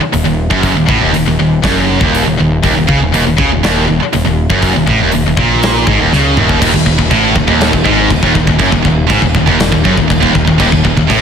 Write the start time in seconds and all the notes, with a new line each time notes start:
0.01 muted distorted electric guitar stroke, muted picked electric bass stroke
0.13 D#1 D#2, open hi-hat
0.24 D#1 D#2
0.51 F#1 F#2, kick
0.63 kick, open hi-hat
0.75 D#1 D#2
0.86 A1 A2, kick
0.99 D#1 D#2
1.13 D#1 D#2, open hi-hat
1.26 D#1 D#2
1.39 D#1 D#2
1.63 F#1 F#2, kick, snare, open hi-hat
2.00 D#1 D#2, kick
2.15 open hi-hat
2.25 D#1 D#2
2.38 D#1 D#2
2.63 D#1 D#2, kick, open hi-hat
2.76 D#1 D#2
2.87 C#2 C#3, kick
3.00 D#1 D#2
3.12 D#1 D#2, open hi-hat
3.26 D#1 D#2
3.37 C#2 C#3, kick
3.51 D#1 D#2
3.64 D#1 D#2, snare, open hi-hat
3.89 D#1 D#2
4.02 muted picked electric bass stroke, muted distorted electric guitar stroke
4.13 D#1 D#2, open hi-hat
4.26 D#1 D#2
4.50 F#1 F#2, kick
4.62 kick, open hi-hat
4.74 D#1 D#2
4.87 A1 A2, kick
4.99 D#1 D#2
5.12 D#1 D#2, open hi-hat
5.26 D#1 D#2
5.37 A#1 A#2, kick
5.63 snare, open hi-hat
5.87 G#1 G#2, kick
6.00 D#1 D#2
6.12 C#2 C#3, snare
6.37 D#1 D#2, mid tom
6.49 kick
6.61 D#1 D#2, kick, crash
6.73 D#1 D#2, kick
6.86 D#1 D#2, kick
6.99 D#1 D#2, kick
7.11 A1 A2, kick, crash
7.36 D#1 D#2, kick
7.47 D#1 D#2, kick
7.61 snare, crash
7.72 D#1 D#2, kick
7.85 G#1 G#2, kick
8.10 D#1 D#2, kick, crash
8.22 D#1 D#2, kick
8.35 D#1 D#2, kick
8.47 D#1 D#2, kick
8.59 F#1 F#2, kick, crash
8.72 D#1 D#2, kick
8.85 D#1 D#2, kick
9.10 G#1 G#2, kick, crash
9.22 D#1 D#2, kick
9.35 D#1 D#2, kick
9.47 D#1 D#2, kick
9.58 D#1 D#2, snare, crash
9.72 D#1 D#2, kick
9.85 F#1 F#2, kick
9.97 D#1 D#2, kick
10.10 D#1 D#2, kick, crash
10.21 D#1 D#2, kick
10.35 D#1 D#2, kick
10.47 D#1 D#2, kick
10.60 D#1 D#2, kick, crash
10.72 D#1 D#2, kick
10.85 D#1 D#2, kick
10.97 D#1 D#2, kick
11.10 A1 A2, kick, crash